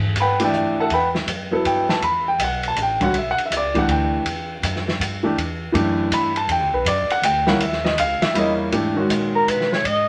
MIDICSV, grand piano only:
0, 0, Header, 1, 2, 480
1, 0, Start_track
1, 0, Tempo, 372439
1, 1156, Time_signature, 3, 2, 24, 8
1, 12998, End_track
2, 0, Start_track
2, 0, Title_t, "Grand piano"
2, 0, Program_c, 0, 0
2, 262, Note_on_c, 0, 83, 85
2, 278, Note_on_c, 0, 78, 69
2, 278, Note_on_c, 0, 79, 69
2, 279, Note_on_c, 0, 71, 70
2, 512, Note_on_c, 0, 52, 64
2, 512, Note_on_c, 0, 57, 61
2, 523, Note_on_c, 0, 62, 56
2, 528, Note_on_c, 0, 67, 70
2, 529, Note_off_c, 0, 83, 0
2, 538, Note_off_c, 0, 71, 0
2, 538, Note_off_c, 0, 78, 0
2, 538, Note_off_c, 0, 79, 0
2, 563, Note_on_c, 0, 79, 79
2, 570, Note_on_c, 0, 74, 67
2, 572, Note_on_c, 0, 76, 64
2, 982, Note_off_c, 0, 79, 0
2, 986, Note_off_c, 0, 74, 0
2, 987, Note_off_c, 0, 76, 0
2, 1035, Note_on_c, 0, 81, 81
2, 1037, Note_on_c, 0, 78, 65
2, 1044, Note_on_c, 0, 69, 67
2, 1047, Note_on_c, 0, 76, 63
2, 1126, Note_off_c, 0, 52, 0
2, 1126, Note_off_c, 0, 57, 0
2, 1131, Note_off_c, 0, 62, 0
2, 1133, Note_off_c, 0, 67, 0
2, 1176, Note_off_c, 0, 81, 0
2, 1178, Note_off_c, 0, 78, 0
2, 1181, Note_off_c, 0, 69, 0
2, 1183, Note_off_c, 0, 76, 0
2, 1205, Note_on_c, 0, 78, 66
2, 1206, Note_on_c, 0, 83, 85
2, 1211, Note_on_c, 0, 71, 65
2, 1211, Note_on_c, 0, 79, 66
2, 1376, Note_off_c, 0, 78, 0
2, 1376, Note_off_c, 0, 83, 0
2, 1380, Note_off_c, 0, 71, 0
2, 1380, Note_off_c, 0, 79, 0
2, 1946, Note_on_c, 0, 54, 64
2, 1954, Note_on_c, 0, 59, 64
2, 1958, Note_on_c, 0, 64, 61
2, 1971, Note_on_c, 0, 69, 71
2, 2145, Note_on_c, 0, 79, 86
2, 2431, Note_off_c, 0, 79, 0
2, 2447, Note_on_c, 0, 81, 83
2, 2563, Note_off_c, 0, 54, 0
2, 2567, Note_off_c, 0, 59, 0
2, 2569, Note_off_c, 0, 64, 0
2, 2576, Note_off_c, 0, 69, 0
2, 2603, Note_off_c, 0, 81, 0
2, 2627, Note_on_c, 0, 83, 88
2, 2912, Note_off_c, 0, 83, 0
2, 2941, Note_on_c, 0, 79, 83
2, 3090, Note_off_c, 0, 79, 0
2, 3148, Note_on_c, 0, 78, 80
2, 3413, Note_off_c, 0, 78, 0
2, 3453, Note_on_c, 0, 81, 97
2, 3587, Note_off_c, 0, 81, 0
2, 3641, Note_on_c, 0, 79, 79
2, 3875, Note_on_c, 0, 50, 65
2, 3875, Note_on_c, 0, 61, 59
2, 3877, Note_on_c, 0, 55, 57
2, 3891, Note_on_c, 0, 66, 71
2, 3900, Note_off_c, 0, 79, 0
2, 3919, Note_on_c, 0, 78, 85
2, 4025, Note_off_c, 0, 50, 0
2, 4025, Note_off_c, 0, 61, 0
2, 4026, Note_off_c, 0, 55, 0
2, 4033, Note_off_c, 0, 66, 0
2, 4060, Note_off_c, 0, 78, 0
2, 4096, Note_on_c, 0, 76, 77
2, 4223, Note_off_c, 0, 76, 0
2, 4264, Note_on_c, 0, 78, 98
2, 4387, Note_off_c, 0, 78, 0
2, 4453, Note_on_c, 0, 76, 74
2, 4562, Note_off_c, 0, 76, 0
2, 4600, Note_on_c, 0, 74, 74
2, 4825, Note_on_c, 0, 52, 65
2, 4839, Note_on_c, 0, 57, 58
2, 4841, Note_on_c, 0, 62, 58
2, 4848, Note_on_c, 0, 67, 71
2, 4860, Note_off_c, 0, 74, 0
2, 4879, Note_on_c, 0, 78, 81
2, 5020, Note_off_c, 0, 78, 0
2, 5044, Note_on_c, 0, 79, 81
2, 5443, Note_off_c, 0, 52, 0
2, 5450, Note_off_c, 0, 57, 0
2, 5451, Note_off_c, 0, 62, 0
2, 5455, Note_off_c, 0, 67, 0
2, 6410, Note_off_c, 0, 79, 0
2, 6739, Note_on_c, 0, 52, 67
2, 6748, Note_on_c, 0, 57, 61
2, 6756, Note_on_c, 0, 62, 66
2, 6768, Note_on_c, 0, 67, 78
2, 6898, Note_off_c, 0, 52, 0
2, 6902, Note_off_c, 0, 57, 0
2, 6906, Note_off_c, 0, 62, 0
2, 6912, Note_off_c, 0, 67, 0
2, 7376, Note_on_c, 0, 52, 76
2, 7392, Note_on_c, 0, 57, 69
2, 7397, Note_on_c, 0, 62, 66
2, 7408, Note_on_c, 0, 67, 79
2, 7909, Note_on_c, 0, 83, 88
2, 8114, Note_off_c, 0, 52, 0
2, 8122, Note_off_c, 0, 57, 0
2, 8125, Note_off_c, 0, 62, 0
2, 8130, Note_off_c, 0, 67, 0
2, 8194, Note_off_c, 0, 83, 0
2, 8214, Note_on_c, 0, 81, 87
2, 8367, Note_off_c, 0, 81, 0
2, 8400, Note_on_c, 0, 79, 82
2, 8679, Note_off_c, 0, 79, 0
2, 8681, Note_on_c, 0, 71, 65
2, 8841, Note_off_c, 0, 71, 0
2, 8863, Note_on_c, 0, 74, 82
2, 9150, Note_off_c, 0, 74, 0
2, 9171, Note_on_c, 0, 78, 100
2, 9326, Note_off_c, 0, 78, 0
2, 9343, Note_on_c, 0, 79, 92
2, 9630, Note_off_c, 0, 79, 0
2, 9630, Note_on_c, 0, 55, 65
2, 9632, Note_on_c, 0, 58, 64
2, 9641, Note_on_c, 0, 61, 60
2, 9642, Note_on_c, 0, 64, 77
2, 9643, Note_on_c, 0, 78, 88
2, 9783, Note_off_c, 0, 55, 0
2, 9784, Note_off_c, 0, 58, 0
2, 9788, Note_off_c, 0, 61, 0
2, 9789, Note_off_c, 0, 64, 0
2, 9801, Note_off_c, 0, 78, 0
2, 9832, Note_on_c, 0, 76, 85
2, 10112, Note_on_c, 0, 75, 91
2, 10115, Note_off_c, 0, 76, 0
2, 10275, Note_off_c, 0, 75, 0
2, 10306, Note_on_c, 0, 77, 96
2, 10592, Note_off_c, 0, 77, 0
2, 10595, Note_on_c, 0, 76, 98
2, 10752, Note_on_c, 0, 55, 70
2, 10757, Note_off_c, 0, 76, 0
2, 10760, Note_on_c, 0, 58, 61
2, 10772, Note_on_c, 0, 61, 60
2, 10772, Note_on_c, 0, 64, 75
2, 10808, Note_on_c, 0, 75, 93
2, 10978, Note_off_c, 0, 75, 0
2, 11235, Note_off_c, 0, 55, 0
2, 11239, Note_off_c, 0, 58, 0
2, 11240, Note_on_c, 0, 52, 63
2, 11245, Note_off_c, 0, 61, 0
2, 11245, Note_off_c, 0, 64, 0
2, 11246, Note_on_c, 0, 57, 57
2, 11254, Note_on_c, 0, 62, 57
2, 11262, Note_on_c, 0, 67, 68
2, 11517, Note_off_c, 0, 52, 0
2, 11520, Note_off_c, 0, 57, 0
2, 11524, Note_off_c, 0, 62, 0
2, 11528, Note_off_c, 0, 67, 0
2, 11546, Note_on_c, 0, 51, 61
2, 11555, Note_on_c, 0, 56, 53
2, 11556, Note_on_c, 0, 61, 56
2, 11559, Note_on_c, 0, 66, 67
2, 12575, Note_off_c, 0, 51, 0
2, 12579, Note_off_c, 0, 56, 0
2, 12580, Note_off_c, 0, 61, 0
2, 12582, Note_off_c, 0, 66, 0
2, 12998, End_track
0, 0, End_of_file